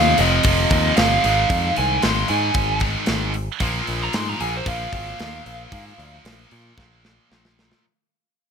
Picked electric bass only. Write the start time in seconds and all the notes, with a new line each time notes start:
Already playing: D#2
0.19 F1
0.45 F1
0.71 D#2
0.98 G1
1.25 G#1
1.50 F2
1.78 C2
2.04 G#1
2.30 G#2
2.55 G#1
3.08 G#1
3.61 A#1
3.88 A#1
4.14 G#2
4.41 A#1
4.66 A#1
4.93 G#1
5.20 D#2
5.46 A#1
5.72 G#2
5.98 D2
6.25 A#1
6.52 A#2
6.78 A#1
7.32 A#1